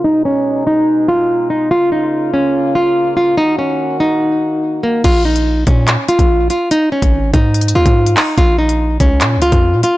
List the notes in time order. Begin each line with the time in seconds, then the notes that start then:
0.04 B2 G#3 D#4
0.25 C#4
0.67 D#4
1.08 F4
1.50 D#4
1.71 C#3 A#3 F4
1.92 D#4
2.34 C#4
2.75 F4
3.17 F4
3.37 D#3 D#4 F#4
3.59 C#4
4.00 D#4
4.83 A#3
5.04 A#1 F4, kick, closed hi-hat, crash
5.25 D#4
5.36 closed hi-hat
5.67 A#2 C#4, kick, closed hi-hat
5.88 clap, closed hi-hat
6.08 F4, closed hi-hat
6.19 A#1, kick, closed hi-hat
6.50 F4, closed hi-hat
6.71 D#4, closed hi-hat
6.92 C#4
7.02 G#1, kick, closed hi-hat
7.34 G#2 D#4, kick, closed hi-hat
7.54 closed hi-hat
7.61 closed hi-hat
7.68 closed hi-hat
7.75 D#2 F4
7.86 G#2, kick, closed hi-hat
8.06 closed hi-hat
8.17 D#4, clap, open hi-hat
8.38 A#1 F4, kick, closed hi-hat
8.59 D#4
8.69 closed hi-hat
9.00 C#2 C#4, kick, closed hi-hat
9.21 A#2, clap, closed hi-hat
9.37 C#2
9.42 F4, closed hi-hat
9.52 F2, kick, closed hi-hat
9.73 A#2
9.83 F4, closed hi-hat